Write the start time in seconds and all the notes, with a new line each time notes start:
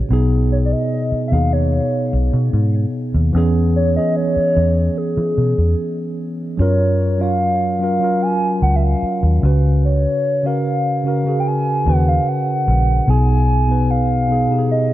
0.09 B1 B2 B3 D#4
0.13 G#4
0.52 C#5
0.65 D5
0.72 D#5
1.12 muted fingered electric bass stroke
1.28 B2 E5
1.32 D#2 B3 D#4 G#4 F5
1.53 C#5
2.13 B1
2.33 B2
2.53 G#2
3.14 D#2
3.33 E2 E3 B3 C#4
3.37 G#4
3.76 C#5
3.94 E3 B3 C#4 D#5
3.99 G#4
4.16 C#5
4.36 muted fingered electric bass stroke
4.57 E2
4.98 G#4
5.17 E3
5.38 B2
5.58 E2
6.57 F#2 F#3 C#4 F4 C#5
6.62 A#4
7.18 F#3 C#4 F4 F5
7.23 C#5
7.79 F#3 C#4 F4 F5
7.84 A#4
8.00 F#3 C#4 F4
8.04 A#4
8.22 G#5
8.62 C#2 F#5
8.76 E5
8.83 F5
9.03 muted fingered electric bass stroke
9.23 D#2
9.42 C#2 C#3 C#4 F#4
9.46 B4
9.85 C#5
10.43 C#3 C#4 F#4 F5
10.47 A#4
11.04 C#3 C#4 F#4 F5
11.08 A#4
11.24 C#3 C#4 F#4
11.29 G#4
11.40 G5
11.47 G#5
11.85 D#2 C#3 C#4 F#4 F#5
11.89 B4
12.08 F5
12.28 F#5
12.68 A#1
13.06 B1 B2 B3 D#4 G#5
13.11 G#4
13.67 B2 B3 D#4
13.71 B4
13.91 F5
14.28 B2 B3 D#4
14.32 G#4
14.48 B2 B3 D#4
14.52 G4
14.59 G#4
14.71 D#5